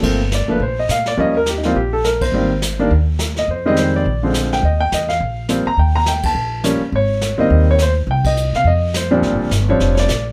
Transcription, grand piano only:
X:1
M:4/4
L:1/16
Q:"Swing" 1/4=209
K:Eblyd
V:1 name="Grand piano"
z4 d2 _c2 =c2 e2 f2 d2 | e2 B2 (3G2 E2 F2 G2 A2 B2 c2- | c8 z6 e2 | c2 e2 c2 d6 z2 g2 |
e2 g2 e2 f6 z2 b2 | g2 b2 g2 a6 z4 | _d6 e4 d2 c2 z2 | g2 e4 f2 e4 c3 z |
z6 _d4 [d=d]4 z2 |]
V:2 name="Grand piano" clef=bass
[F,A,B,C]2 z4 [F,A,B,D]2 z8 | [F,G,B,_D]2 z4 [F,G,B,C]2 z8 | [E,G,B,C]2 z4 [E,G,B,D]2 z8 | z2 [E,G,_A,C]6 z2 [D,F,A,C]6 |
z12 [F,G,B,C]2 z2 | z12 [F,G,B,_D]2 z2 | z6 [E,G,B,C]6 z4 | z12 z2 [B,,F,G,CD]2- |
[B,,F,G,CD]4 z2 [F,G,CD]6 z4 |]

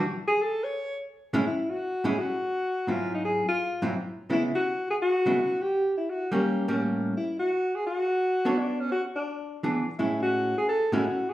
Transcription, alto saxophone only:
X:1
M:4/4
L:1/8
Q:"Swing" 1/4=169
K:Amix
V:1 name="Alto saxophone"
z ^G A c2 z3 | [K:A] E F2 G F4 | =F ^D G F3 z2 | E F2 G F3 =G- |
=G E F G3 z2 | E F2 G F4 | D C F D3 z2 | E F2 G A F2 G |]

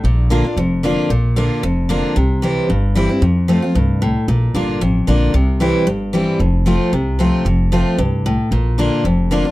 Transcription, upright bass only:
X:1
M:4/4
L:1/8
Q:"Swing" 1/4=227
K:F
V:1 name="Upright bass" clef=bass
B,,,4 F,,,4 | B,,,4 F,,,4 | C,,4 G,,,4 | F,,4 C,,4 |
B,,,2 G,,,2 A,,,2 B,,,2 | C,,4 G,,,4 | F,,,4 C,,4 | F,,,4 C,,4 |
B,,,4 F,,,4 |]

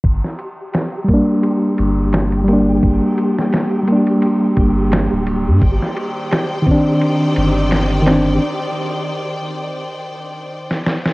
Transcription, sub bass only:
X:1
M:4/4
L:1/16
Q:"Swing 16ths" 1/4=86
K:Gm
V:1 name="Sub bass" clef=bass
G,,, z8 z G,,,6 | G,,, z8 z G,,,3 D,,,2 G,, | G,,, z8 z G,,,6 | z16 |]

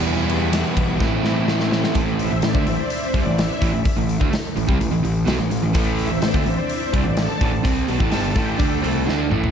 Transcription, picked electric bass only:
X:1
M:4/4
L:1/16
Q:1/4=126
K:Am
V:1 name="Picked electric bass" clef=bass
E,,6 B,,,2 A,,,2 A,,,6 | A,,,3 A,,, A,,, D,, A,,, z3 C,, A,,,2 z A,,, A,,, | z A,,,2 D,, z2 A,,, C,, A,,, A,,, A,,,2 B,,, A,,, A,,, A,,, | A,,,3 A,,, A,,, D,, A,,, z3 C,, A,,,2 z A,,, A,,, |
C,,2 B,,, A,,, G,,,2 A,,,2 D,,2 C,,2 D,,2 A,,,2 |]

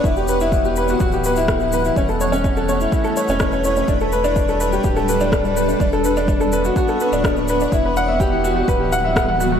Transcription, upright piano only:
X:1
M:4/4
L:1/16
Q:1/4=125
K:Edor
V:1 name="Upright piano"
E G B E E G B F F G B E z E B E | C A c C C A c E E A c C C C c C | D A B D D A B G G A B D D D B D | D A B D D A B F F A B D D D B D |
E B f e G E F F B G f e f f F F |]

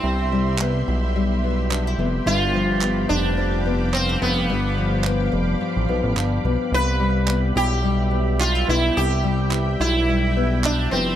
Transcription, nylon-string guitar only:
X:1
M:4/4
L:1/16
Q:"Swing 16ths" 1/4=108
K:C
V:1 name="Nylon-string guitar"
[G,E]2 G,2 B,2 E2 G,2 B,2 D E B,2 | G,,2 F,2 B,2 D2 F,2 B,2 C D B,2 | G,,2 F,2 B,2 D2 F,2 B,2 D2 B,2 | z2 G,2 B,2 E2 G,2 B,2 D E B,2- |
B,2 G,2 B,2 E2 G,2 B,2 E2 B,2 |]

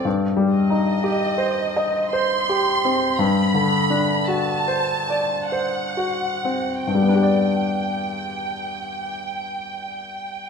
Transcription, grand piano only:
X:1
M:3/4
L:1/8
Q:1/4=49
K:G
V:1 name="Grand piano"
(3G,, G, _E (3G c _e (3c G C | (3G,, D, D (3F c d (3c F C | [G,,G,B,DGd]6 |]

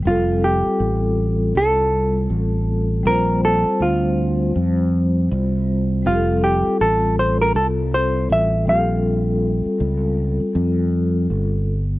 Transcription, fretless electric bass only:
X:1
M:4/4
L:1/16
Q:"Swing 16ths" 1/4=80
K:F
V:1 name="Fretless electric bass" clef=bass
F,,,3 z A,,,4 C,,4 A,,,4 | B,,,3 z D,,4 F,,4 C,,4 | F,,,3 z A,,,4 C,,4 A,,,2 B,,,2- | B,,,3 z _D,,3 z F,,4 G,,,4 |]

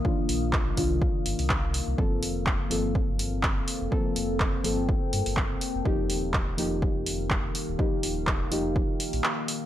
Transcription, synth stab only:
X:1
M:4/4
L:1/8
Q:"Swing 16ths" 1/4=124
K:Fmix
V:1 name="Synth stab"
[E,B,DF]3 [E,B,DF]4- [E,B,DF] | [F,B,CA]3 [F,B,CA]4- [F,B,CA] | [F,B,CA]3 [F,B,CA]4 z | [F,B,EG]3 [F,B,EG]4- [F,B,EG] |
[F,B,EG]3 [F,B,EG]4- [F,B,EG] |]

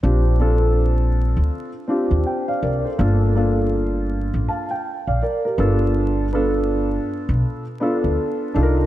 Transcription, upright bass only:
X:1
M:4/4
L:1/16
Q:"Swing 16ths" 1/4=81
K:Gm
V:1 name="Upright bass" clef=bass
B,,,6- B,,, D,, z3 E,, z2 C,, z | G,,,6- G,,, A,,, z3 B,,, z2 G,,,2- | G,,,6- G,,, =B,,, z3 D,, z2 C,,2 |]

